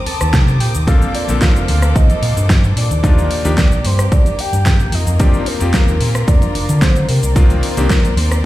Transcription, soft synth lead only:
0.07 0.57 A5 loud
0.60 0.72 G5 loud
0.88 1.13 F5 loud
1.15 1.27 D5 loud
1.42 1.98 F5 loud
1.96 2.50 D#5 medium
2.77 3.54 D5 loud
3.59 3.88 D5 loud
3.86 4.14 C5 loud
4.13 4.42 D5 loud
4.40 4.96 G5 loud
4.94 5.21 D#5 loud
5.21 5.49 D5 loud
5.48 6.01 A#4 medium
6.27 6.83 D5 loud
6.82 7.10 C5 loud
7.08 8.45 A#4 loud

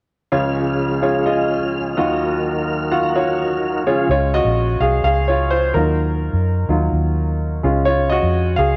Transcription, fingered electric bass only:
4.09 4.42 C#2 medium
4.45 4.78 A#1 medium
4.80 5.02 C2 medium
5.04 5.71 C#2 medium
5.75 6.30 D#2 medium
6.33 6.66 F#2 medium
6.69 6.91 D#2 medium
6.92 7.59 D#2 medium
7.64 8.18 C#2 medium
8.23 8.55 F2 medium
8.58 8.77 C#2 medium

